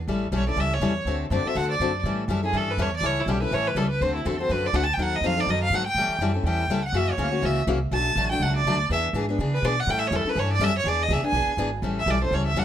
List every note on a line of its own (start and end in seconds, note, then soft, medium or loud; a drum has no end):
0.08 0.31 A1 medium
0.08 0.26 E3 medium
0.08 0.26 G3 medium
0.08 0.26 C#4 medium
0.08 0.27 E4 medium
0.08 0.27 A4 medium
0.32 0.55 B1 medium
0.32 0.43 E3 medium
0.32 0.43 G3 medium
0.32 0.43 C#4 medium
0.32 0.43 E4 medium
0.32 0.43 A4 medium
0.36 0.48 C#5 medium
0.47 0.56 C#4 soft
0.47 0.57 E4 soft
0.47 0.56 A4 medium
0.47 0.62 D5 medium
0.56 0.80 C#2 medium
0.56 0.75 E3 medium
0.56 0.75 G3 medium
0.56 0.75 C#4 medium
0.56 0.76 E4 medium
0.56 0.76 A4 medium
0.56 0.75 E5 medium
0.74 1.08 C#5 medium
0.80 1.05 E2 medium
0.80 0.92 E3 medium
0.80 0.92 G3 loud
0.80 0.92 C#4 medium
0.80 0.92 E4 medium
0.80 0.92 A4 loud
1.05 1.30 D2 medium
1.05 1.24 D3 medium
1.05 1.25 A3 medium
1.05 1.25 C4 medium
1.05 1.25 F#4 medium
1.05 1.25 A4 medium
1.30 1.43 F#2 medium
1.30 1.41 D3 medium
1.30 1.41 A3 medium
1.30 1.42 C4 medium
1.30 1.42 F#4 medium
1.30 1.42 A4 medium
1.30 1.49 D5 medium
1.44 1.54 C4 soft
1.44 1.55 F#4 medium
1.44 1.55 A4 medium
1.44 1.58 E5 medium
1.44 muted upright bass stroke soft
1.55 1.79 D2 medium
1.55 1.73 D3 medium
1.55 1.73 A3 medium
1.55 1.73 C4 medium
1.55 1.74 F#4 medium
1.55 1.74 A4 medium
1.55 1.70 F#5 loud
1.71 2.03 D5 medium
1.80 2.03 F#2 medium
1.80 1.90 D3 medium
1.80 1.90 A3 medium
1.80 1.91 C4 medium
1.80 1.91 F#4 medium
1.80 1.91 A4 loud
2.03 2.27 A2 medium
2.03 2.23 E3 medium
2.03 2.23 G3 medium
2.03 2.23 C#4 medium
2.03 2.23 E4 medium
2.03 2.23 A4 medium
2.28 2.52 F#2 medium
2.28 2.39 E3 medium
2.28 2.39 G3 medium
2.28 2.40 C#4 medium
2.28 2.40 E4 medium
2.28 2.40 A4 loud
2.43 2.53 C#4 soft
2.43 2.53 E4 soft
2.43 2.58 G#4 medium
2.43 2.53 A4 medium
2.53 2.77 G2 medium
2.53 2.71 E3 medium
2.53 2.71 G3 medium
2.53 2.72 C#4 medium
2.53 2.72 E4 medium
2.53 2.72 A4 medium
2.53 2.73 A4 medium
2.71 2.83 B4 medium
2.77 3.00 E2 medium
2.77 2.88 E3 medium
2.77 2.88 G3 medium
2.77 2.89 C#4 medium
2.77 2.89 E4 medium
2.77 2.89 A4 loud
2.82 2.94 C#5 medium
2.96 3.07 D5 loud
3.01 3.25 C#2 medium
3.01 3.20 E3 medium
3.01 3.20 G3 medium
3.01 3.21 C#4 medium
3.01 3.21 E4 medium
3.01 3.21 A4 medium
3.06 3.21 C#5 medium
3.20 3.32 E4 medium
3.26 3.50 B1 medium
3.26 3.37 E3 medium
3.26 3.37 G3 medium
3.26 3.38 C#4 medium
3.26 3.38 E4 medium
3.26 3.38 A4 loud
3.30 3.42 G4 medium
3.42 3.51 C#4 soft
3.42 3.52 E4 medium
3.42 3.55 B4 medium
3.51 3.74 A1 medium
3.51 3.70 E3 medium
3.51 3.70 G3 medium
3.51 3.70 C#4 medium
3.51 3.70 E4 medium
3.51 3.70 A4 medium
3.51 3.69 C#5 loud
3.67 3.78 B4 medium
3.75 3.99 C#2 medium
3.75 3.86 E3 medium
3.75 3.86 G3 medium
3.75 3.86 C#4 medium
3.75 3.86 E4 medium
3.75 3.89 A4 medium
3.75 3.86 A4 loud
3.89 4.03 B4 medium
4.01 4.24 D2 medium
4.01 4.19 D3 medium
4.01 4.19 A3 medium
4.01 4.19 C4 medium
4.01 4.19 F#4 medium
4.01 4.19 A4 medium
4.01 4.14 C5 medium
4.15 4.28 E4 medium
4.25 4.49 E2 medium
4.25 4.35 D3 medium
4.25 4.35 A3 medium
4.25 4.35 C4 medium
4.25 4.35 F#4 medium
4.25 4.39 A4 medium
4.25 4.36 A4 medium
4.39 4.49 C4 soft
4.39 4.50 F#4 medium
4.39 4.49 A4 medium
4.39 4.53 C5 medium
4.49 4.73 F#2 medium
4.49 4.67 D3 medium
4.49 4.68 A3 medium
4.49 4.68 C4 medium
4.49 4.68 F#4 medium
4.49 4.68 A4 medium
4.49 4.67 B4 medium
4.66 4.77 D5 loud
4.73 4.97 D2 medium
4.73 4.84 D3 medium
4.73 4.84 A3 loud
4.73 4.84 C4 medium
4.73 4.84 F#4 medium
4.73 4.84 A4 loud
4.73 4.85 F#5 medium
4.83 4.95 A5 loud
4.93 5.03 G5 medium
4.97 5.20 D#2 medium
4.97 5.16 D#3 medium
4.97 5.17 F#3 medium
4.97 5.17 C4 medium
4.97 5.17 D#4 medium
4.97 5.17 A4 medium
5.02 5.17 F#5 medium
5.16 5.27 D#5 medium
5.21 5.46 F2 medium
5.21 5.33 D#3 medium
5.21 5.33 F#3 medium
5.21 5.33 C4 medium
5.21 5.33 D#4 medium
5.21 5.34 A4 medium
5.26 5.42 F5 loud
5.37 5.48 C4 soft
5.37 5.47 D#4 medium
5.37 5.47 A4 medium
5.37 5.52 D5 loud
5.46 5.69 F#2 medium
5.46 5.65 D#3 medium
5.46 5.66 F#3 medium
5.46 5.66 C4 medium
5.46 5.66 D#4 medium
5.46 5.66 A4 medium
5.46 5.62 D#5 medium
5.63 5.76 F5 loud
5.70 5.94 G#2 medium
5.70 5.82 D#3 medium
5.70 5.83 F#3 medium
5.70 5.83 C4 loud
5.70 5.83 D#4 loud
5.74 5.83 A4 medium
5.74 5.86 F#5 loud
5.87 6.19 G5 loud
5.95 6.07 A2 medium
5.95 6.15 E3 medium
5.95 6.15 G3 medium
5.95 6.15 C#4 medium
5.95 6.15 E4 medium
5.99 6.15 A4 medium
6.08 muted upright bass stroke soft
6.19 6.43 F#2 medium
6.19 6.31 E3 medium
6.19 6.31 G3 medium
6.19 6.31 C#4 medium
6.19 6.31 E4 medium
6.19 6.31 A4 medium
6.34 6.46 C#4 soft
6.34 6.45 E4 medium
6.34 6.44 A4 medium
6.43 6.67 E2 medium
6.43 6.64 E3 medium
6.43 6.64 G3 medium
6.43 6.64 C#4 medium
6.43 6.64 E4 medium
6.43 6.82 G5 medium
6.47 6.64 A4 medium
6.67 6.92 C#2 medium
6.67 6.80 E3 medium
6.67 6.80 G3 medium
6.67 6.80 C#4 loud
6.67 6.80 E4 loud
6.67 6.80 A4 loud
6.85 6.98 F#5 medium
6.92 7.17 F#2 medium
6.92 7.12 C#3 medium
6.92 7.12 E3 medium
6.92 7.12 A#3 medium
6.92 7.12 C#4 medium
6.92 7.12 F#4 medium
6.96 7.13 E5 medium
7.11 7.47 C#5 medium
7.18 7.42 D2 medium
7.18 7.28 C#3 medium
7.18 7.28 E3 medium
7.18 7.29 A#3 medium
7.18 7.29 C#4 medium
7.18 7.29 F#4 medium
7.32 7.42 A#3 soft
7.32 7.42 C#4 soft
7.32 7.42 F#4 medium
7.42 7.66 C#2 medium
7.42 7.60 C#3 medium
7.42 7.61 E3 medium
7.42 7.61 A#3 medium
7.42 7.61 C#4 medium
7.42 7.61 F#4 medium
7.42 7.58 E5 medium
7.67 7.91 C2 medium
7.67 7.77 C#3 loud
7.67 7.77 E3 medium
7.67 7.78 A#3 loud
7.67 7.78 C#4 loud
7.67 7.78 F#4 loud
7.91 8.15 B1 medium
7.91 8.10 B2 medium
7.91 8.10 F#3 medium
7.91 8.10 A3 medium
7.91 8.10 D4 medium
7.91 8.10 F#4 medium
7.91 8.28 A5 loud
8.15 8.39 A1 medium
8.15 8.27 B2 medium
8.15 8.27 F#3 medium
8.15 8.27 A3 medium
8.15 8.27 D4 medium
8.15 8.27 F#4 medium
8.31 8.41 A3 soft
8.31 8.41 D4 medium
8.31 8.41 F#4 medium
8.31 8.44 G5 medium
8.40 8.64 C#2 medium
8.40 8.59 B2 medium
8.40 8.60 F#3 medium
8.40 8.60 A3 medium
8.40 8.60 D4 medium
8.40 8.60 F#4 medium
8.40 8.55 F#5 medium
8.56 8.88 D5 medium
8.65 8.89 D2 medium
8.65 8.76 B2 medium
8.65 8.76 F#3 loud
8.65 8.76 A3 loud
8.65 8.76 D4 loud
8.65 8.77 F#4 loud
8.89 9.13 E2 medium
8.89 9.08 E3 medium
8.89 9.08 B3 medium
8.89 9.08 D4 medium
8.89 9.08 G#4 medium
8.89 9.00 E5 loud
9.13 9.37 G#2 medium
9.13 9.24 E3 medium
9.13 9.25 B3 medium
9.13 9.25 D4 medium
9.13 9.25 G#4 loud
9.30 9.39 B3 soft
9.30 9.39 D4 medium
9.38 9.62 C#3 medium
9.38 9.57 E3 medium
9.38 9.57 B3 medium
9.38 9.58 D4 medium
9.38 9.57 G#4 medium
9.54 9.66 B4 medium
9.62 9.86 B2 medium
9.62 9.74 E3 medium
9.62 9.74 B3 loud
9.62 9.74 D4 loud
9.62 9.74 G#4 loud
9.62 9.81 D5 loud
9.80 9.92 F#5 loud
9.87 10.10 A2 medium
9.87 10.05 E3 medium
9.87 10.06 G3 medium
9.87 10.06 C#4 medium
9.87 10.06 E4 medium
9.87 10.06 A4 medium
9.87 10.00 G5 loud
9.99 10.09 E5 medium
10.07 10.24 E2 loud
10.07 10.17 C#5 medium
10.12 10.22 E3 medium
10.12 10.22 G3 medium
10.12 10.22 C#4 medium
10.12 10.23 E4 loud
10.12 10.23 A4 medium
10.12 10.31 A4 medium
10.24 10.36 C#4 medium
10.24 10.36 E4 medium
10.24 10.36 A4 medium
10.24 muted upright bass stroke soft
10.29 10.41 B4 loud
10.36 10.59 G2 medium
10.36 10.54 E3 medium
10.36 10.55 G3 medium
10.36 10.55 C#4 medium
10.36 10.55 E4 medium
10.36 10.55 A4 medium
10.36 10.51 C#5 medium
10.53 10.65 D5 loud
10.59 10.83 F#2 medium
10.59 10.71 E3 loud
10.59 10.71 G3 loud
10.59 10.71 C#4 loud
10.59 10.71 E4 loud
10.59 10.71 A4 loud
10.64 10.76 E5 loud
10.78 10.89 C#5 loud
10.84 11.08 E2 medium
10.84 11.03 E3 medium
10.84 11.03 B3 medium
10.84 11.03 D4 medium
10.84 11.04 G#4 medium
10.84 11.04 D5 loud
11.02 11.15 D#5 loud
11.08 11.22 C#2 medium
11.08 11.20 E3 medium
11.08 11.20 B3 medium
11.08 11.20 D4 loud
11.08 11.20 G#4 medium
11.13 11.25 E5 medium
11.23 11.33 B3 medium
11.23 11.34 D4 medium
11.23 11.33 G#4 medium
11.23 muted upright bass stroke soft
11.27 11.58 G#5 loud
11.33 11.46 B1 loud
11.33 11.52 E3 medium
11.33 11.52 B3 medium
11.33 11.52 D4 medium
11.33 11.52 G#4 medium
11.47 muted upright bass stroke soft
11.57 11.82 G#1 medium
11.57 11.68 E3 loud
11.57 11.69 B3 loud
11.57 11.69 D4 loud
11.57 11.69 G#4 loud
11.82 12.05 A1 medium
11.82 12.01 E3 medium
11.82 12.01 G3 medium
11.82 12.01 C#4 medium
11.82 12.02 E4 medium
11.82 12.01 A4 medium
11.99 12.12 E5 medium
12.06 12.30 B1 medium
12.06 12.17 E3 medium
12.06 12.18 G3 medium
12.06 12.18 C#4 medium
12.06 12.18 E4 medium
12.06 12.18 A4 medium
12.10 12.23 D5 medium
12.22 12.32 C#4 soft
12.22 12.32 E4 medium
12.22 12.32 A4 medium
12.22 12.36 C5 loud
12.31 12.54 C#2 medium
12.31 12.50 E3 medium
12.31 12.50 G3 medium
12.31 12.50 C#4 medium
12.31 12.51 E4 medium
12.31 12.51 A4 medium
12.31 12.46 C#5 medium
12.47 12.60 E5 medium
12.54 12.65 E2 medium
12.54 12.65 E3 medium
12.54 12.65 G3 medium
12.54 12.65 C#4 loud
12.54 12.65 E4 medium
12.54 12.65 A4 medium
12.59 12.65 F#5 medium